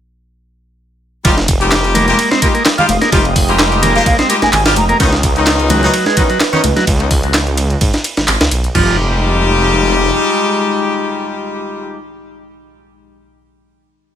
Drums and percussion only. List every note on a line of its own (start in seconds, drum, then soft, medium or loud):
1.25 kick loud
1.25 closed hi-hat soft
1.25 ride medium
1.38 snare medium
1.48 kick loud
1.48 closed hi-hat medium
1.48 ride medium
1.61 closed hi-hat soft
1.72 snare loud
1.72 clap loud
1.72 closed hi-hat soft
1.72 ride medium
1.84 closed hi-hat soft
1.95 closed hi-hat medium
1.95 ride medium
1.95 high conga medium
1.95 low conga medium
2.08 closed hi-hat soft
2.19 closed hi-hat soft
2.19 ride medium
2.32 snare medium
2.42 kick loud
2.42 closed hi-hat medium
2.42 ride medium
2.55 closed hi-hat soft
2.66 snare loud
2.66 clap loud
2.66 closed hi-hat soft
2.66 ride medium
2.78 closed hi-hat soft
2.78 low conga medium
2.89 closed hi-hat medium
2.89 ride medium
2.89 high conga medium
3.02 snare soft
3.02 closed hi-hat soft
3.12 kick loud
3.12 closed hi-hat soft
3.12 ride medium
3.25 ride soft
3.36 kick loud
3.36 closed hi-hat medium
3.36 open hi-hat medium
3.49 closed hi-hat soft
3.59 snare loud
3.59 clap loud
3.59 closed hi-hat soft
3.59 ride medium
3.72 closed hi-hat soft
3.83 closed hi-hat medium
3.83 ride medium
3.83 low conga loud
3.96 closed hi-hat soft
4.06 kick loud
4.06 closed hi-hat soft
4.06 ride medium
4.19 snare medium
4.19 closed hi-hat soft
4.30 closed hi-hat medium
4.30 ride medium
4.42 snare medium
4.42 closed hi-hat soft
4.42 high conga medium
4.53 clap loud
4.53 closed hi-hat soft
4.53 ride medium
4.53 low conga loud
4.66 snare loud
4.66 closed hi-hat soft
4.76 closed hi-hat medium
4.76 ride medium
4.76 high conga loud
4.89 closed hi-hat soft
5.00 kick loud
5.00 closed hi-hat soft
5.00 ride medium
5.13 snare medium
5.23 kick loud
5.23 closed hi-hat medium
5.23 ride medium
5.36 closed hi-hat soft
5.47 snare loud
5.47 clap loud
5.47 closed hi-hat soft
5.47 ride medium
5.59 closed hi-hat soft
5.70 closed hi-hat medium
5.70 ride medium
5.70 high conga medium
5.70 low conga medium
5.83 closed hi-hat soft
5.94 closed hi-hat soft
5.94 ride medium
6.06 snare medium
6.17 kick loud
6.17 closed hi-hat medium
6.17 ride medium
6.30 closed hi-hat soft
6.40 snare loud
6.40 clap loud
6.40 closed hi-hat soft
6.40 ride medium
6.53 closed hi-hat soft
6.53 low conga medium
6.64 closed hi-hat medium
6.64 ride medium
6.64 high conga medium
6.77 snare soft
6.77 closed hi-hat soft
6.87 kick loud
6.87 closed hi-hat soft
6.87 ride medium
7.00 ride soft
7.11 kick loud
7.11 closed hi-hat medium
7.11 open hi-hat medium
7.23 closed hi-hat soft
7.34 snare loud
7.34 clap loud
7.34 closed hi-hat soft
7.34 ride medium
7.47 closed hi-hat soft
7.57 closed hi-hat medium
7.57 ride medium
7.70 closed hi-hat soft
7.81 kick loud
7.81 closed hi-hat soft
7.81 ride medium
7.94 snare medium
7.94 closed hi-hat soft
8.04 closed hi-hat medium
8.04 ride medium
8.17 snare medium
8.17 closed hi-hat soft
8.28 clap loud
8.28 closed hi-hat soft
8.28 ride medium
8.41 snare loud
8.41 closed hi-hat soft
8.51 closed hi-hat medium
8.51 ride medium
8.64 closed hi-hat soft
8.75 kick loud
8.75 floor tom loud
8.75 crash medium